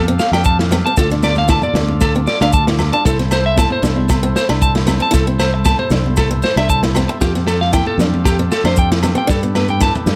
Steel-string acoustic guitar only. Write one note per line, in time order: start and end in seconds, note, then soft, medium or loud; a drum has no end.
0.08 0.28 C4 medium
0.34 0.54 D4 medium
0.61 0.69 E4 medium
0.72 0.82 C4 medium
0.87 0.95 C4 medium
0.99 1.09 F4 loud
1.11 1.31 D4 medium
1.49 1.69 E4 medium
1.76 1.96 D4 medium
2.16 2.36 C4 medium
2.42 2.62 D4 medium
2.68 2.77 E4 medium
2.93 3.03 D4 medium
3.07 3.17 E4 medium
3.19 3.39 C4 medium
3.57 3.78 E4 medium
3.83 4.03 D4 medium
4.23 4.43 C4 medium
4.49 4.69 D4 medium
4.75 4.85 E4 medium
4.87 4.98 C4 medium
5.00 5.10 C4 medium
5.11 5.22 E4 medium
5.27 5.47 C4 medium
5.91 6.11 D4 medium
6.31 muted steel-string acoustic guitar stroke medium
6.57 6.77 D4 medium
6.83 6.93 E4 medium
6.96 7.07 C4 medium
7.09 muted steel-string acoustic guitar stroke medium
7.22 7.32 F4 medium
7.35 7.55 C4 medium
7.73 7.93 E4 medium
8.00 8.20 D4 medium
8.39 8.59 C4 medium
8.65 8.85 D4 medium
8.92 9.01 E4 medium
9.03 9.14 C4 medium
9.15 9.25 C4 medium
9.27 9.39 D4 loud
9.43 9.63 B3 medium
9.80 10.01 E4 medium
10.07 10.15 D4 medium